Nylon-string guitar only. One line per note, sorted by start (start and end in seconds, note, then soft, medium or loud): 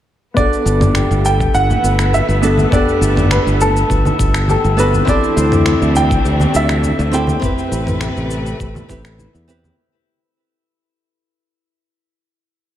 0.34 2.38 B3 medium
0.34 2.39 D4 medium
0.34 2.40 F#5 medium
0.40 2.41 A4 medium
2.41 2.68 B3 medium
2.41 2.68 D4 medium
2.41 2.69 F#4 medium
2.41 2.69 A4 medium
2.70 4.73 B3 medium
2.70 4.74 D4 medium
2.70 4.75 F#5 medium
2.75 4.76 A4 medium
4.77 5.03 B3 medium
4.77 5.04 D4 medium
4.77 5.04 F#4 medium
4.77 5.05 A4 medium
5.05 7.09 C4 medium
5.05 7.09 E4 medium
5.05 7.10 G4 medium
5.10 7.11 A4 medium
7.12 7.38 C4 medium
7.12 7.39 E4 medium
7.12 7.39 G4 medium
7.12 7.40 A4 medium
7.40 8.85 C4 medium
7.40 8.86 E4 medium
7.40 8.87 G4 medium
7.45 8.88 B4 loud
8.89 9.01 C4 medium
8.89 9.01 E4 medium
8.89 9.02 G4 medium
8.89 9.02 B4 loud
9.48 9.74 C4 medium
9.48 9.74 E4 medium
9.48 9.75 G4 medium
9.48 9.75 B4 loud